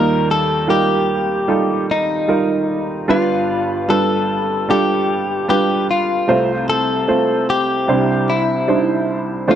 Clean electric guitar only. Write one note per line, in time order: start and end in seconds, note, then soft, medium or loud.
0.00 0.31 A#4 medium
0.31 0.67 A4 medium
0.70 1.85 G4 medium
1.91 3.10 D#4 medium
3.11 3.92 F4 medium
3.90 4.70 A4 medium
4.71 5.49 G4 medium
5.50 5.87 G4 medium
5.91 6.66 F4 medium
6.70 7.50 A4 medium
7.50 8.32 G4 medium
8.30 9.50 E4 medium
9.51 9.55 F4 medium